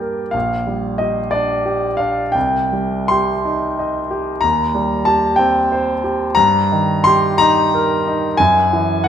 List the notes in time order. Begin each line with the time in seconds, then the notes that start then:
Already playing: G2 A#3 G4 D5 G5
0.00 A#4
0.31 A#1 F5
0.67 G3
0.98 G4 D#5
1.31 D4 D5
1.65 G4
1.97 D4 F5
2.32 C2 G5
2.72 G3
3.08 G4 C6
3.45 D#4
3.79 D#5
4.11 G4
4.41 D#2 A#5
4.75 G3
5.05 G4 A5
5.36 C4 G5
5.72 C5
6.04 G4
6.35 G2 A#5
6.72 D#3
7.04 G4 C6
7.38 D#4 A#5
7.74 A#4
8.07 D#4
8.37 F#2 G#5
8.73 E3
9.04 F#5